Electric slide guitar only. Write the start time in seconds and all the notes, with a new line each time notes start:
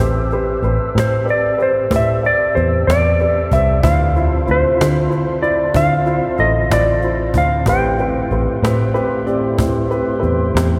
1.00 C5
1.30 D5
1.62 C5
1.96 E5
2.26 D5
2.55 C5
2.87 D5
3.53 E5
3.84 F5
4.51 C5
5.43 D5
5.76 F5
6.40 D#5
6.73 D5
7.38 F5
7.69 G5